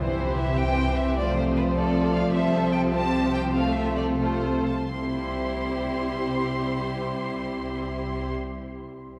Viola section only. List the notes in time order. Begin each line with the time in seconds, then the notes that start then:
0.02 E3 E4
0.61 C4
1.19 F3 A3
1.77 A3
2.34 C4
3.56 A3 C4
4.20 A3 F4
4.88 G3 E4